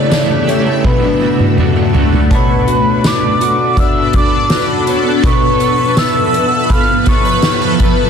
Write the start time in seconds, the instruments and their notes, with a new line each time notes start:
Already playing: ambient pad C#3 A3 E4 G4 E5, twelve-string acoustic guitar C#3 A3 G4, overdriven electric guitar A3 E4 G4, soft synth lead D5
0.10 overdriven electric guitar E3 A3 E4 G4, twelve-string acoustic guitar E4, celesta A5, snare, closed hi-hat, tambourine
0.30 twelve-string acoustic guitar A3
0.47 overdriven electric guitar A3 E4 G4, twelve-string acoustic guitar G4, soft synth lead C#5, closed hi-hat
0.66 twelve-string acoustic guitar A3
0.84 overdriven electric guitar B2 F#3 A3 D4 F#4, twelve-string acoustic guitar B2, ambient pad A3 D4 F#4 B4, soft synth lead B4, celesta B5, kick, high tom
1.03 twelve-string acoustic guitar D4, high tom
1.20 overdriven electric guitar A3 D4 F#4, twelve-string acoustic guitar F#4
1.39 twelve-string acoustic guitar A3, mid tom
1.57 overdriven electric guitar F#3 A3 D4 F#4, twelve-string acoustic guitar D4, mid tom
1.76 twelve-string acoustic guitar A3
1.93 overdriven electric guitar A3 D4 F#4, twelve-string acoustic guitar F#4, floor tom
2.12 twelve-string acoustic guitar A3, floor tom
2.31 twelve-string acoustic guitar B2 C#5, ambient pad B3 D4 A4 B4, celesta A5, soft synth lead B5, kick, closed hi-hat
2.67 twelve-string acoustic guitar F#4, closed hi-hat
3.04 soft synth lead D6, snare, closed hi-hat, tambourine
3.40 twelve-string acoustic guitar F#4, closed hi-hat
3.77 twelve-string acoustic guitar D4, soft synth lead E6, kick, closed hi-hat
4.13 soft synth lead D6, kick, closed hi-hat
4.50 twelve-string acoustic guitar F#4, snare, closed hi-hat, tambourine
4.87 twelve-string acoustic guitar C#5, closed hi-hat
5.23 twelve-string acoustic guitar B2 B4, ambient pad F3, soft synth lead C#6, kick, closed hi-hat
5.60 twelve-string acoustic guitar A4, closed hi-hat
5.97 twelve-string acoustic guitar B4, soft synth lead E6, snare, closed hi-hat, tambourine
6.33 twelve-string acoustic guitar A4, closed hi-hat
6.70 twelve-string acoustic guitar E4, celesta B5, soft synth lead F6, kick, closed hi-hat
7.06 twelve-string acoustic guitar A4, soft synth lead C#6, kick, closed hi-hat
7.25 twelve-string acoustic guitar B4
7.42 twelve-string acoustic guitar G4, snare, closed hi-hat, tambourine
7.62 twelve-string acoustic guitar A4
7.80 twelve-string acoustic guitar B4, kick, closed hi-hat